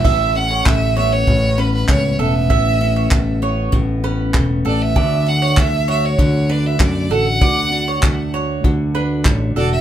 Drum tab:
CC |x-------|--------|--------|--------|
CP |--x---x-|--x---x-|--x---x-|--x---x-|
BD |o-o-o-o-|o-o-o-o-|o-o-o-o-|o-o-o-o-|